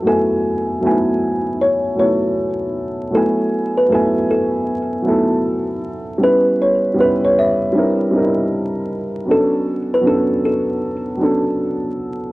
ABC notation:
X:1
M:4/4
L:1/16
Q:"Swing 16ths" 1/4=78
K:F#m
V:1 name="Kalimba"
A8 c2 c3 z3 | A3 B A2 A3 z6 z | B2 c2 B c e6 z4 | A3 B A2 A3 z6 z |]
V:2 name="Upright piano"
[F,A,B,Eg]4 [F,A,B,Eg]6 [F,A,B,EA]6 | [F,A,B,Eg]4 [F,A,B,Eg]6 [F,A,B,EA]6 | [=G,B,CEB]4 [G,B,CEB]4 [G,=CDE_B]2 [G,CD^DEB]6 | [F,B,CDA]4 [F,B,CDA]6 [F,B,CDA]6 |]